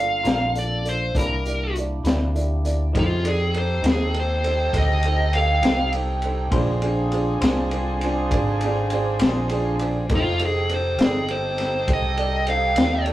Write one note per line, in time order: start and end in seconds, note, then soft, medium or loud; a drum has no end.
0.00 0.22 G1 medium
0.00 1.13 A#3 medium
0.00 1.12 D4 medium
0.00 0.17 F4 medium
0.00 1.13 F4 medium
0.00 0.18 A4 soft
0.00 1.13 A4 medium
0.00 0.18 A#4 medium
0.00 0.18 D5 medium
0.00 0.55 F5 medium
0.23 1.12 A#1 medium
0.23 0.43 G3 medium
0.23 0.43 D4 medium
0.23 0.47 F4 medium
0.23 0.42 F4 medium
0.23 0.47 A4 soft
0.23 0.42 A#4 medium
0.23 0.48 A#4 soft
0.23 0.47 D5 medium
0.23 snare medium
0.23 closed hi-hat medium
0.54 0.77 F4 soft
0.54 0.77 A4 medium
0.54 0.77 A#4 soft
0.54 0.77 D5 medium
0.54 closed hi-hat medium
0.59 0.86 D5 medium
0.83 1.07 F4 medium
0.83 1.07 A4 soft
0.83 1.07 A#4 soft
0.83 1.07 D5 medium
0.83 closed hi-hat medium
0.89 1.16 C5 medium
1.13 2.02 C2 medium
1.13 1.33 C3 medium
1.13 2.92 A#3 medium
1.13 1.33 A#3 medium
1.13 2.92 D4 medium
1.13 1.33 D4 medium
1.13 2.92 E4 medium
1.13 1.38 E4 medium
1.13 1.34 E4 medium
1.13 2.92 G4 medium
1.13 1.38 G4 medium
1.13 1.38 A#4 medium
1.13 1.38 D5 medium
1.13 kick medium
1.13 closed hi-hat medium
1.18 1.75 A#4 loud
1.46 1.68 E4 medium
1.46 1.68 G4 medium
1.46 1.68 A#4 soft
1.46 1.68 D5 medium
1.46 closed hi-hat medium
1.75 1.98 E4 medium
1.75 1.98 G4 medium
1.75 1.98 A#4 medium
1.75 1.99 D5 medium
1.75 closed hi-hat medium
2.03 2.91 D2 medium
2.03 2.23 C3 medium
2.03 2.23 A#3 medium
2.03 2.23 D4 medium
2.03 2.22 E4 medium
2.03 2.27 E4 medium
2.03 2.27 G4 medium
2.03 2.28 A#4 medium
2.03 2.28 D5 medium
2.03 snare loud
2.03 closed hi-hat medium
2.34 2.57 E4 medium
2.34 2.57 G4 medium
2.34 2.57 A#4 medium
2.34 2.57 D5 medium
2.34 closed hi-hat medium
2.64 2.87 E4 medium
2.64 2.87 G4 medium
2.64 2.87 A#4 medium
2.64 2.87 D5 medium
2.64 closed hi-hat medium
2.93 3.81 F2 medium
2.93 3.12 F3 medium
2.93 3.12 A3 medium
2.93 3.24 C#4 medium
2.93 3.16 D#4 medium
2.93 3.12 D#4 medium
2.93 3.24 E4 medium
2.93 3.17 G4 medium
2.93 3.13 G4 medium
2.93 3.24 G#4 medium
2.93 6.48 A4 medium
2.93 3.17 A4 medium
2.93 3.24 A#4 medium
2.93 3.17 C5 medium
2.93 6.48 D#5 medium
2.93 6.48 G5 medium
2.93 kick loud
2.93 ride medium
2.99 3.26 F4 medium
3.23 6.49 C4 medium
3.23 6.48 D#4 medium
3.23 3.46 D#4 medium
3.23 6.49 G4 medium
3.23 3.47 G4 medium
3.23 3.47 A4 medium
3.23 6.49 A4 medium
3.23 3.47 D5 medium
3.23 ride medium
3.29 3.55 G#4 medium
3.54 3.77 D#4 medium
3.54 3.77 G4 medium
3.54 3.77 A4 medium
3.54 3.77 C5 medium
3.54 3.85 C5 medium
3.54 ride medium
3.82 4.70 D#2 medium
3.82 4.02 F3 medium
3.82 4.02 A3 medium
3.82 4.01 D#4 medium
3.82 4.06 D#4 medium
3.82 4.01 G4 medium
3.82 4.07 G4 medium
3.82 4.07 A4 medium
3.82 4.07 C5 medium
3.82 snare medium
3.82 ride medium
3.91 4.16 G#4 medium
4.14 4.36 D#4 soft
4.14 4.36 G4 medium
4.14 4.36 A4 medium
4.14 4.37 C5 medium
4.14 ride medium
4.20 4.75 C5 medium
4.43 4.66 D#4 medium
4.43 4.66 G4 soft
4.43 4.66 A4 soft
4.43 4.66 C5 medium
4.43 ride medium
4.73 5.60 D2 medium
4.73 4.96 D#4 medium
4.73 4.96 G4 soft
4.73 4.96 A4 medium
4.73 4.96 C5 medium
4.73 kick medium
4.73 ride medium
4.78 5.33 D#5 medium
5.03 5.26 D#4 medium
5.03 5.26 G4 medium
5.03 5.26 A4 medium
5.03 5.26 C5 medium
5.03 ride medium
5.33 5.56 D#4 medium
5.33 5.56 G4 medium
5.33 5.56 A4 soft
5.33 5.56 C5 medium
5.33 5.92 F5 medium
5.33 ride medium
5.62 6.49 C2 loud
5.62 5.81 F3 medium
5.62 5.81 A3 medium
5.62 5.80 D#4 medium
5.62 5.86 D#4 medium
5.62 5.80 G4 medium
5.62 5.86 G4 soft
5.62 5.86 A4 soft
5.62 5.86 C5 medium
5.62 snare loud
5.62 ride medium
5.93 6.15 D#4 medium
5.93 6.16 G4 medium
5.93 6.16 A4 medium
5.93 6.16 C5 medium
5.93 ride medium
6.22 6.45 D#4 medium
6.22 6.45 G4 medium
6.22 6.46 A4 medium
6.22 6.45 C5 medium
6.22 ride medium
6.51 7.38 A#1 medium
6.51 6.69 A#3 medium
6.51 10.05 C4 medium
6.51 6.70 D4 medium
6.51 10.06 D4 medium
6.51 6.74 D4 medium
6.51 10.06 F4 medium
6.51 6.75 F4 medium
6.51 10.05 G#4 medium
6.51 6.70 G#4 medium
6.51 6.75 G#4 medium
6.51 6.70 C5 medium
6.51 10.06 C5 medium
6.51 6.75 C5 medium
6.51 10.06 D5 medium
6.51 10.06 G#5 medium
6.51 kick loud
6.51 ride medium
6.82 7.04 D4 medium
6.82 7.04 F4 medium
6.82 7.05 G#4 medium
6.82 7.05 C5 medium
6.82 ride medium
7.12 7.35 D4 medium
7.12 7.34 F4 medium
7.12 7.34 G#4 medium
7.12 7.35 C5 medium
7.12 ride medium
7.41 8.28 C2 medium
7.41 7.61 A#3 medium
7.41 7.60 D4 medium
7.41 7.65 D4 medium
7.41 7.65 F4 medium
7.41 7.60 G#4 medium
7.41 7.65 G#4 medium
7.41 7.65 A#4 medium
7.41 7.59 C5 medium
7.41 snare loud
7.41 ride medium
7.71 7.94 D4 medium
7.71 7.94 F4 medium
7.71 7.95 G#4 medium
7.71 7.94 C5 medium
7.71 ride medium
8.01 8.25 D4 medium
8.01 8.25 F4 medium
8.01 8.25 G#4 medium
8.01 8.25 C5 medium
8.01 ride medium
8.30 9.17 G#1 medium
8.30 8.54 D4 medium
8.30 8.54 F4 medium
8.30 8.55 G#4 medium
8.30 8.54 C5 medium
8.30 kick medium
8.30 ride medium
8.61 8.85 D4 medium
8.61 8.85 F4 medium
8.61 8.85 G#4 medium
8.61 8.85 D5 medium
8.61 ride medium
8.90 9.13 D4 medium
8.90 9.14 F4 medium
8.90 9.14 G#4 medium
8.90 9.14 C5 medium
8.90 ride medium
9.19 10.07 A#1 loud
9.19 9.39 A#3 medium
9.19 9.38 D4 medium
9.19 9.43 D4 medium
9.19 9.43 F4 medium
9.19 9.38 G#4 medium
9.19 9.43 G#4 medium
9.19 9.38 C5 medium
9.19 9.43 C5 medium
9.19 snare loud
9.19 ride medium
9.49 9.73 D4 medium
9.49 9.73 F4 medium
9.49 9.73 G#4 medium
9.49 9.73 C5 medium
9.49 ride medium
9.79 10.03 D4 medium
9.79 10.03 F4 medium
9.79 10.03 G#4 medium
9.79 10.03 C5 medium
9.79 ride medium
10.09 10.96 F1 medium
10.09 10.27 F3 medium
10.09 10.27 A3 medium
10.09 13.13 C4 medium
10.09 10.32 D#4 medium
10.09 10.28 D#4 medium
10.09 13.13 D#4 medium
10.09 10.32 G4 medium
10.09 13.13 G4 medium
10.09 10.28 G4 medium
10.09 10.32 A4 medium
10.09 13.13 A4 medium
10.09 10.32 C5 medium
10.09 13.13 D#5 medium
10.09 13.13 G5 medium
10.09 kick loud
10.09 ride medium
10.15 10.41 F4 loud
10.39 10.62 D#4 medium
10.39 10.62 G4 medium
10.39 10.62 A4 medium
10.39 10.62 C5 medium
10.39 ride medium
10.45 10.71 G#4 medium
10.69 10.92 D#4 medium
10.69 10.91 G4 medium
10.69 10.92 A4 medium
10.69 10.91 C5 medium
10.69 ride medium
10.74 11.00 C5 medium
10.98 11.85 G1 loud
10.98 11.18 F3 medium
10.98 11.17 A3 medium
10.98 11.17 D#4 medium
10.98 11.22 D#4 medium
10.98 11.17 G4 medium
10.98 11.22 G4 medium
10.98 11.22 A4 medium
10.98 11.22 D5 medium
10.98 snare loud
10.98 ride medium
11.04 11.30 G#4 medium
11.28 11.51 D#4 medium
11.28 11.51 G4 soft
11.28 11.51 A4 soft
11.28 11.51 C5 medium
11.28 11.87 C5 medium
11.28 ride medium
11.58 11.81 D#4 medium
11.58 11.81 G4 soft
11.58 11.81 A4 soft
11.58 11.81 C5 medium
11.58 snare soft
11.58 ride medium
11.88 12.74 C2 medium
11.88 12.10 D#4 medium
11.88 12.10 G4 medium
11.88 12.10 A4 medium
11.88 12.11 C5 medium
11.88 kick medium
11.88 ride medium
11.93 12.48 D#5 medium
12.17 12.40 D#4 medium
12.17 12.40 G4 medium
12.17 12.40 A4 medium
12.17 12.40 D5 medium
12.17 ride medium
12.47 12.69 D#4 medium
12.47 12.70 G4 soft
12.47 12.70 A4 medium
12.47 12.70 C5 medium
12.47 13.06 F5 medium
12.47 ride medium
12.76 13.13 D#2 medium
12.76 12.96 F3 medium
12.76 12.96 A3 medium
12.76 12.99 D#4 soft
12.76 12.95 D#4 medium
12.76 12.99 G4 soft
12.76 12.95 G4 medium
12.76 12.99 A4 soft
12.76 12.99 D5 medium
12.76 snare loud
12.76 ride medium
13.06 13.13 D#4 medium
13.06 13.13 G4 medium
13.06 13.13 A4 medium
13.06 13.13 D5 medium
13.06 ride medium